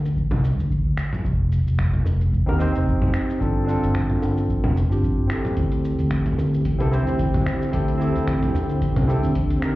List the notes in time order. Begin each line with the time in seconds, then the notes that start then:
Already playing: D2
0.05 shaker
0.16 kick, shaker
0.31 C2, mid tom, high bongo
0.44 shaker
0.58 D2, shaker
0.70 kick, shaker
0.85 D2
0.97 finger snap, shaker
1.13 mid tom, shaker
1.24 F1, kick, shaker
1.52 shaker
1.66 F1, shaker
1.79 finger snap, kick, shaker
1.93 mid tom
2.06 F1, high bongo, shaker
2.21 shaker
2.33 kick, shaker
2.46 D#2 C4 D#4 G4 A#4, high bongo
2.59 C4 D#4 G4 C5, shaker
2.72 F1 C4 D#4 G4, shaker
2.78 C5
2.87 kick, shaker
3.01 F1, mid tom
3.14 finger snap, shaker
3.30 shaker
3.40 G1 C4 D4 F4 A4, kick, shaker
3.65 C4 D4, shaker
3.69 F4 A4
3.83 G1, shaker
3.95 finger snap, kick, shaker
4.10 mid tom
4.22 G1, high bongo, shaker
4.37 shaker
4.49 kick, shaker
4.64 F1, mid tom, high bongo
4.77 shaker
4.89 G1 C4 D4 F4 G4, shaker
5.03 kick, shaker
5.18 G1
5.27 C4 E4 G4, finger snap, shaker
5.33 A4
5.45 mid tom, shaker
5.56 D2 D3 C4 E4 G4, kick, closed hi-hat, shaker
5.72 closed hi-hat
5.85 shaker
5.99 D2, closed hi-hat, shaker
6.11 finger snap, kick, closed hi-hat, shaker
6.26 closed hi-hat, mid tom
6.38 D2, high bongo, shaker
6.54 shaker
6.65 kick, closed hi-hat, shaker
6.79 C2 C4 E4 G4 A4, closed hi-hat, high bongo
6.91 C4 E4 G4 C5, shaker
7.04 D2 C4 E4, closed hi-hat, shaker
7.08 G4 C5
7.19 kick, closed hi-hat, shaker
7.34 D2, closed hi-hat, mid tom
7.46 finger snap, shaker
7.62 shaker
7.72 D2 C4 D4 E4 G4 A4, kick, closed hi-hat, shaker
7.88 closed hi-hat
7.97 C4 E4, shaker
8.02 G4 A4
8.15 D2, closed hi-hat, shaker
8.27 finger snap, kick, closed hi-hat, shaker
8.43 closed hi-hat, mid tom
8.53 D2, high bongo, shaker
8.69 closed hi-hat, shaker
8.81 kick, closed hi-hat, shaker
8.96 C2, closed hi-hat, mid tom, high bongo
9.07 C4 E4 G4 A4, shaker
9.23 D2, closed hi-hat, shaker
9.35 kick, closed hi-hat, shaker
9.50 D2, closed hi-hat
9.59 F3 C4 D#4 G4 A#4, finger snap, shaker
9.64 G4 A#4